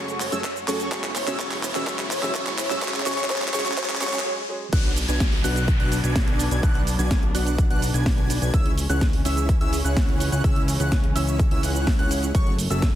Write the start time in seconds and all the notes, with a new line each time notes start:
Already playing: F#1 G#3 A3 C#4 F#4 G#4 A4 C#5 C#6, riser
0.08 closed hi-hat, shaker
0.20 C#5, clap, open hi-hat, shaker
0.32 F#2 F#3 A3 C#4 F#4 G#4 A4 E5 E6, closed hi-hat, shaker
0.44 kick, clap, closed hi-hat, shaker
0.56 closed hi-hat, shaker
0.67 F#2 F#3 A3 C#4 F#4 G#4 A4 C#5 C#6, clap, open hi-hat, shaker
0.80 closed hi-hat, shaker
0.91 E1 F#3 G#3 B3 C#4 E4 F#4 G#4 C#6, kick, clap, closed hi-hat, shaker
1.04 clap, closed hi-hat, shaker
1.15 C#5, clap, open hi-hat, shaker
1.27 E1 F#3 G#3 C#4 F#4 G#4 E5 E6, clap, closed hi-hat, shaker
1.39 E1 F#3 G#3 C#4 F#4 G#4 C#6, kick, clap, closed hi-hat, shaker
1.51 clap, open hi-hat, shaker
1.63 C#5, clap, open hi-hat, shaker
1.74 E1 F#3 G#3 C#4 F#4 G#4 E5 E6, clap, closed hi-hat, shaker
1.86 E1 F#3 G#3 C#4 G#4 C#5 C#6, kick, clap, closed hi-hat, shaker
1.99 clap, closed hi-hat, shaker
2.11 C#5, clap, open hi-hat, shaker
2.22 E1 F#3 G#3 C#4 F#4 G#4 E5 E6, clap, closed hi-hat, shaker
2.34 E1 F#3 G#3 C#4 G#4 C#6, kick, clap, closed hi-hat, shaker
2.46 clap, closed hi-hat, shaker
2.58 C#5, clap, open hi-hat, shaker
2.70 E1 F#3 G#3 C#4 F#4 G#4 E5 E6, clap, closed hi-hat, shaker
2.81 E1 F#3 G#3 C#4 F#4 G#4 C#5 C#6, kick, clap, closed hi-hat, shaker
2.88 clap
2.94 clap, closed hi-hat, shaker
3.00 clap
3.06 E1 F#3 G#3 C#4 F#4 G#4 C#5 C#6, clap, open hi-hat, shaker
3.12 clap
3.18 clap, closed hi-hat, shaker
3.24 clap
3.29 E1 F#3 G#3 C#4 F#4 G#4 C#5 C#6, kick, clap, closed hi-hat, shaker
3.36 clap
3.42 clap, closed hi-hat, shaker
3.48 clap
3.53 E1 F#3 G#3 C#4 F#4 G#4 C#5 C#6, clap, open hi-hat, shaker
3.60 clap
3.66 clap, closed hi-hat, shaker
3.71 clap
3.77 E1 F#3 G#3 C#4 F#4 G#4 C#5 C#6, kick, clap, closed hi-hat, shaker
3.83 clap
3.89 clap, shaker
3.95 clap
4.01 E1 F#3 G#3 C#4 F#4 G#4 C#5 C#6, clap, open hi-hat, shaker
4.07 clap
4.13 clap, closed hi-hat, shaker
4.19 clap
4.25 F#3 G#3 C#4 G#4
4.48 F#3 G#3 C#4 G#4
4.73 B1 F#3 B3 D4 F#4 B4 D5 F#5 F#6, kick, closed hi-hat, crash, downlifter, shaker
4.85 closed hi-hat
4.96 open hi-hat, shaker
5.08 B1 D4 F#4 B4 D5 G#5 G#6, closed hi-hat, shaker
5.20 kick, snare, closed hi-hat, shaker
5.32 open hi-hat
5.44 B1 D4 F#4 B4 D5 F#5 F#6, open hi-hat, shaker
5.56 closed hi-hat, shaker
5.68 kick, closed hi-hat, shaker
5.80 B1 D4 F#4 B4 D5 F#5 F#6, closed hi-hat
5.92 open hi-hat, shaker
6.04 B1 D4 F#4 B4 D5 G#5 G#6, closed hi-hat, shaker
6.16 kick, snare, closed hi-hat, shaker
6.28 closed hi-hat
6.39 open hi-hat, shaker
6.51 B1 D4 F#4 B4 D5 G#5 G#6, closed hi-hat, shaker
6.63 B1 D4 F#4 B4 D5 F#5 F#6, kick, closed hi-hat, shaker
6.75 closed hi-hat
6.87 open hi-hat, shaker
6.99 B1 D4 F#4 B4 D5 G#5 G#6, closed hi-hat, shaker
7.11 kick, snare, closed hi-hat, shaker
7.23 closed hi-hat
7.34 B1 D4 F#4 B4 D5 F#5 F#6, open hi-hat, shaker
7.47 closed hi-hat, shaker
7.58 kick, closed hi-hat, shaker
7.70 B1 D4 F#4 B4 D5 F#5 F#6, closed hi-hat
7.82 open hi-hat, shaker
7.94 B1 D4 F#4 B4 D5 G#5 G#6, closed hi-hat, shaker
8.06 kick, snare, open hi-hat, shaker
8.18 closed hi-hat
8.30 open hi-hat, shaker
8.42 B1 D4 F#4 B4 D5 G#5 G#6, closed hi-hat, shaker
8.54 C#2 E3 C#4 E4 G#4 C#5 E5 E6, kick, closed hi-hat, shaker
8.66 closed hi-hat
8.78 open hi-hat, shaker
8.89 C#2 C#4 E4 G#4 C#5 F#5 F#6, closed hi-hat, shaker
9.01 kick, snare, closed hi-hat, shaker
9.13 open hi-hat
9.25 C#2 C#4 E4 G#4 C#5 E5 E6, open hi-hat, shaker
9.37 closed hi-hat, shaker
9.49 kick, closed hi-hat, shaker
9.61 C#2 C#4 E4 G#4 C#5 E5 E6, closed hi-hat
9.73 open hi-hat, shaker
9.85 C#2 C#4 E4 G#4 C#5 F#5 F#6, shaker
9.97 kick, snare, closed hi-hat, shaker
10.09 closed hi-hat
10.20 open hi-hat, shaker
10.32 C#2 C#4 E4 G#4 C#5 F#5 F#6, closed hi-hat, shaker
10.44 C#2 C#4 E4 G#4 C#5 E5 E6, kick, closed hi-hat, shaker
10.56 closed hi-hat
10.68 open hi-hat, shaker
10.80 C#2 C#4 E4 G#4 C#5 F#5 F#6, closed hi-hat, shaker
10.92 kick, snare, closed hi-hat, shaker
11.04 closed hi-hat
11.16 C#2 C#4 E4 G#4 C#5 E5 E6, open hi-hat, shaker
11.27 closed hi-hat, shaker
11.39 kick, closed hi-hat, shaker
11.51 C#2 C#4 E4 G#4 C#5 E5 E6, closed hi-hat
11.63 C#2 C#4 E4 G#4 C#5 F#5 F#6, open hi-hat, shaker
11.75 closed hi-hat, shaker
11.87 kick, snare, open hi-hat, shaker
11.99 C#2 C#4 E4 G#4 C#5 F#5 F#6, closed hi-hat
12.11 open hi-hat, shaker
12.23 closed hi-hat, shaker
12.35 F#1 F#3 A3 C#4 F#4 G#4 A4 C#5 C#6, kick, closed hi-hat, shaker
12.47 closed hi-hat
12.59 open hi-hat, shaker
12.70 F#1 C#4 F#4 G#4 A4 E5 E6, closed hi-hat, shaker
12.82 kick, snare, closed hi-hat, shaker